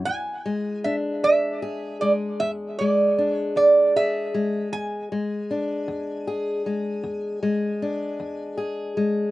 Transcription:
0, 0, Header, 1, 3, 480
1, 0, Start_track
1, 0, Tempo, 775194
1, 33, Time_signature, 12, 3, 24, 8
1, 5765, End_track
2, 0, Start_track
2, 0, Title_t, "Resonator guitar played with a steel bar"
2, 0, Program_c, 0, 25
2, 33, Note_on_c, 0, 80, 106
2, 489, Note_off_c, 0, 80, 0
2, 522, Note_on_c, 0, 76, 81
2, 586, Note_off_c, 0, 76, 0
2, 767, Note_on_c, 0, 76, 100
2, 1217, Note_off_c, 0, 76, 0
2, 1244, Note_on_c, 0, 74, 80
2, 1308, Note_off_c, 0, 74, 0
2, 1485, Note_on_c, 0, 76, 88
2, 1549, Note_off_c, 0, 76, 0
2, 1725, Note_on_c, 0, 74, 85
2, 2066, Note_off_c, 0, 74, 0
2, 2066, Note_on_c, 0, 73, 85
2, 2202, Note_off_c, 0, 73, 0
2, 2210, Note_on_c, 0, 74, 92
2, 2426, Note_off_c, 0, 74, 0
2, 2455, Note_on_c, 0, 76, 91
2, 2901, Note_off_c, 0, 76, 0
2, 2927, Note_on_c, 0, 80, 96
2, 5295, Note_off_c, 0, 80, 0
2, 5765, End_track
3, 0, Start_track
3, 0, Title_t, "Steel-string acoustic guitar"
3, 0, Program_c, 1, 25
3, 0, Note_on_c, 1, 64, 62
3, 44, Note_on_c, 1, 40, 75
3, 282, Note_on_c, 1, 56, 57
3, 471, Note_off_c, 1, 40, 0
3, 526, Note_off_c, 1, 64, 0
3, 528, Note_on_c, 1, 62, 61
3, 764, Note_on_c, 1, 40, 75
3, 1005, Note_on_c, 1, 68, 66
3, 1192, Note_off_c, 1, 40, 0
3, 1248, Note_off_c, 1, 56, 0
3, 1251, Note_on_c, 1, 56, 63
3, 1487, Note_on_c, 1, 40, 74
3, 1723, Note_off_c, 1, 56, 0
3, 1738, Note_on_c, 1, 56, 62
3, 1913, Note_off_c, 1, 40, 0
3, 1962, Note_off_c, 1, 62, 0
3, 1972, Note_on_c, 1, 62, 60
3, 2205, Note_on_c, 1, 40, 75
3, 2441, Note_off_c, 1, 68, 0
3, 2453, Note_on_c, 1, 68, 64
3, 2632, Note_off_c, 1, 40, 0
3, 2682, Note_off_c, 1, 56, 0
3, 2690, Note_on_c, 1, 56, 59
3, 2895, Note_off_c, 1, 62, 0
3, 2896, Note_off_c, 1, 68, 0
3, 2925, Note_on_c, 1, 40, 80
3, 3163, Note_off_c, 1, 56, 0
3, 3170, Note_on_c, 1, 56, 59
3, 3352, Note_off_c, 1, 40, 0
3, 3410, Note_on_c, 1, 62, 63
3, 3640, Note_on_c, 1, 40, 75
3, 3885, Note_on_c, 1, 68, 61
3, 4070, Note_off_c, 1, 40, 0
3, 4117, Note_off_c, 1, 56, 0
3, 4124, Note_on_c, 1, 56, 57
3, 4356, Note_on_c, 1, 40, 72
3, 4591, Note_off_c, 1, 56, 0
3, 4598, Note_on_c, 1, 56, 62
3, 4787, Note_off_c, 1, 40, 0
3, 4836, Note_off_c, 1, 62, 0
3, 4844, Note_on_c, 1, 62, 60
3, 5075, Note_on_c, 1, 40, 67
3, 5302, Note_off_c, 1, 68, 0
3, 5310, Note_on_c, 1, 68, 63
3, 5506, Note_off_c, 1, 40, 0
3, 5546, Note_off_c, 1, 56, 0
3, 5554, Note_on_c, 1, 56, 60
3, 5763, Note_off_c, 1, 68, 0
3, 5765, Note_off_c, 1, 56, 0
3, 5765, Note_off_c, 1, 62, 0
3, 5765, End_track
0, 0, End_of_file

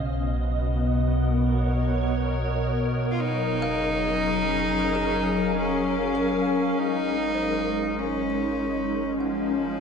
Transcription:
0, 0, Header, 1, 5, 480
1, 0, Start_track
1, 0, Tempo, 1200000
1, 1274, Time_signature, 3, 2, 24, 8
1, 3920, End_track
2, 0, Start_track
2, 0, Title_t, "Kalimba"
2, 0, Program_c, 0, 108
2, 0, Note_on_c, 0, 65, 54
2, 465, Note_off_c, 0, 65, 0
2, 1449, Note_on_c, 0, 77, 62
2, 1980, Note_on_c, 0, 68, 74
2, 2460, Note_on_c, 0, 70, 65
2, 2556, Note_off_c, 0, 68, 0
2, 2939, Note_on_c, 0, 72, 60
2, 3036, Note_off_c, 0, 70, 0
2, 3320, Note_on_c, 0, 63, 57
2, 3497, Note_off_c, 0, 77, 0
2, 3682, Note_on_c, 0, 78, 50
2, 3777, Note_off_c, 0, 63, 0
2, 3920, Note_off_c, 0, 72, 0
2, 3920, Note_off_c, 0, 78, 0
2, 3920, End_track
3, 0, Start_track
3, 0, Title_t, "Ambient pad"
3, 0, Program_c, 1, 92
3, 0, Note_on_c, 1, 47, 80
3, 0, Note_on_c, 1, 59, 77
3, 0, Note_on_c, 1, 61, 82
3, 0, Note_on_c, 1, 75, 82
3, 0, Note_on_c, 1, 77, 72
3, 371, Note_on_c, 1, 70, 79
3, 411, Note_off_c, 1, 77, 0
3, 413, Note_off_c, 1, 61, 0
3, 480, Note_on_c, 1, 73, 88
3, 1272, Note_off_c, 1, 47, 0
3, 1273, Note_off_c, 1, 59, 0
3, 1279, Note_on_c, 1, 54, 85
3, 1365, Note_on_c, 1, 68, 81
3, 1431, Note_on_c, 1, 61, 86
3, 1849, Note_off_c, 1, 73, 0
3, 1850, Note_off_c, 1, 75, 0
3, 1932, Note_on_c, 1, 77, 81
3, 2712, Note_on_c, 1, 56, 75
3, 2717, Note_off_c, 1, 54, 0
3, 2820, Note_on_c, 1, 63, 57
3, 3275, Note_off_c, 1, 68, 0
3, 3293, Note_off_c, 1, 61, 0
3, 3295, Note_off_c, 1, 77, 0
3, 3361, Note_on_c, 1, 61, 90
3, 3920, Note_off_c, 1, 56, 0
3, 3920, Note_off_c, 1, 61, 0
3, 3920, Note_off_c, 1, 63, 0
3, 3920, Note_off_c, 1, 70, 0
3, 3920, End_track
4, 0, Start_track
4, 0, Title_t, "Cello"
4, 0, Program_c, 2, 42
4, 1246, Note_on_c, 2, 65, 77
4, 1281, Note_on_c, 2, 63, 110
4, 1287, Note_off_c, 2, 65, 0
4, 2236, Note_on_c, 2, 61, 88
4, 2242, Note_off_c, 2, 63, 0
4, 2715, Note_on_c, 2, 63, 102
4, 2721, Note_off_c, 2, 61, 0
4, 3195, Note_on_c, 2, 61, 81
4, 3201, Note_off_c, 2, 63, 0
4, 3675, Note_off_c, 2, 61, 0
4, 3681, Note_on_c, 2, 53, 84
4, 3920, Note_off_c, 2, 53, 0
4, 3920, End_track
5, 0, Start_track
5, 0, Title_t, "Sub bass"
5, 0, Program_c, 3, 38
5, 0, Note_on_c, 3, 35, 83
5, 1250, Note_off_c, 3, 35, 0
5, 1278, Note_on_c, 3, 30, 83
5, 2692, Note_off_c, 3, 30, 0
5, 2720, Note_on_c, 3, 32, 76
5, 3920, Note_off_c, 3, 32, 0
5, 3920, End_track
0, 0, End_of_file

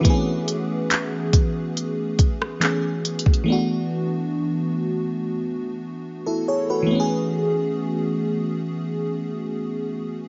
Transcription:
0, 0, Header, 1, 3, 480
1, 0, Start_track
1, 0, Key_signature, 3, "major"
1, 0, Tempo, 857143
1, 27, Time_signature, 4, 2, 24, 8
1, 5757, End_track
2, 0, Start_track
2, 0, Title_t, "FM electric piano"
2, 0, Program_c, 0, 5
2, 0, Control_c, 0, 64, 127
2, 0, Note_on_c, 0, 66, 57
2, 0, Note_on_c, 0, 71, 67
2, 5, Note_on_c, 0, 52, 83
2, 17, Note_on_c, 0, 57, 76
2, 30, Note_on_c, 0, 59, 74
2, 34, Control_c, 0, 64, 0
2, 42, Note_on_c, 0, 60, 62
2, 54, Note_on_c, 0, 68, 92
2, 71, Note_off_c, 0, 60, 0
2, 78, Note_on_c, 0, 61, 76
2, 122, Control_c, 0, 64, 127
2, 136, Note_off_c, 0, 71, 0
2, 138, Note_off_c, 0, 66, 0
2, 1434, Note_off_c, 0, 52, 0
2, 1440, Note_off_c, 0, 57, 0
2, 1446, Note_off_c, 0, 59, 0
2, 1456, Note_on_c, 0, 52, 57
2, 1458, Note_off_c, 0, 68, 0
2, 1460, Note_on_c, 0, 57, 56
2, 1466, Note_off_c, 0, 61, 0
2, 1466, Note_on_c, 0, 59, 56
2, 1473, Note_on_c, 0, 61, 53
2, 1478, Note_on_c, 0, 68, 64
2, 1918, Note_off_c, 0, 52, 0
2, 1925, Note_on_c, 0, 52, 83
2, 1929, Note_off_c, 0, 57, 0
2, 1936, Note_on_c, 0, 57, 74
2, 1942, Note_off_c, 0, 59, 0
2, 1949, Note_on_c, 0, 59, 77
2, 1950, Note_off_c, 0, 61, 0
2, 1952, Note_off_c, 0, 68, 0
2, 1955, Control_c, 0, 64, 0
2, 1960, Note_on_c, 0, 62, 74
2, 1972, Note_on_c, 0, 66, 89
2, 2058, Control_c, 0, 64, 127
2, 3377, Note_off_c, 0, 66, 0
2, 3508, Note_on_c, 0, 69, 70
2, 3512, Note_on_c, 0, 64, 58
2, 3622, Note_off_c, 0, 69, 0
2, 3624, Note_off_c, 0, 64, 0
2, 3630, Note_on_c, 0, 73, 72
2, 3632, Note_on_c, 0, 68, 60
2, 3742, Note_off_c, 0, 73, 0
2, 3744, Note_off_c, 0, 68, 0
2, 3751, Note_on_c, 0, 71, 74
2, 3754, Note_on_c, 0, 66, 61
2, 3815, Note_off_c, 0, 52, 0
2, 3822, Note_on_c, 0, 52, 84
2, 3839, Note_off_c, 0, 57, 0
2, 3845, Note_off_c, 0, 59, 0
2, 3845, Note_on_c, 0, 57, 82
2, 3851, Note_off_c, 0, 62, 0
2, 3869, Note_on_c, 0, 59, 81
2, 3874, Control_c, 0, 64, 0
2, 3893, Note_on_c, 0, 61, 79
2, 3919, Note_on_c, 0, 68, 99
2, 3977, Note_off_c, 0, 71, 0
2, 3978, Control_c, 0, 64, 127
2, 3979, Note_off_c, 0, 66, 0
2, 5757, Note_off_c, 0, 52, 0
2, 5757, Note_off_c, 0, 57, 0
2, 5757, Note_off_c, 0, 59, 0
2, 5757, Note_off_c, 0, 61, 0
2, 5757, Note_off_c, 0, 68, 0
2, 5757, End_track
3, 0, Start_track
3, 0, Title_t, "Drums"
3, 26, Note_on_c, 9, 36, 110
3, 27, Note_on_c, 9, 42, 73
3, 82, Note_off_c, 9, 36, 0
3, 83, Note_off_c, 9, 42, 0
3, 268, Note_on_c, 9, 42, 74
3, 324, Note_off_c, 9, 42, 0
3, 509, Note_on_c, 9, 42, 75
3, 514, Note_on_c, 9, 39, 118
3, 565, Note_off_c, 9, 42, 0
3, 570, Note_off_c, 9, 39, 0
3, 746, Note_on_c, 9, 36, 112
3, 746, Note_on_c, 9, 42, 71
3, 802, Note_off_c, 9, 36, 0
3, 802, Note_off_c, 9, 42, 0
3, 991, Note_on_c, 9, 42, 59
3, 1047, Note_off_c, 9, 42, 0
3, 1225, Note_on_c, 9, 42, 72
3, 1226, Note_on_c, 9, 36, 92
3, 1281, Note_off_c, 9, 42, 0
3, 1282, Note_off_c, 9, 36, 0
3, 1353, Note_on_c, 9, 37, 87
3, 1409, Note_off_c, 9, 37, 0
3, 1465, Note_on_c, 9, 42, 66
3, 1473, Note_on_c, 9, 39, 121
3, 1521, Note_off_c, 9, 42, 0
3, 1529, Note_off_c, 9, 39, 0
3, 1708, Note_on_c, 9, 42, 69
3, 1764, Note_off_c, 9, 42, 0
3, 1787, Note_on_c, 9, 42, 53
3, 1826, Note_on_c, 9, 36, 90
3, 1843, Note_off_c, 9, 42, 0
3, 1868, Note_on_c, 9, 42, 41
3, 1882, Note_off_c, 9, 36, 0
3, 1924, Note_off_c, 9, 42, 0
3, 5757, End_track
0, 0, End_of_file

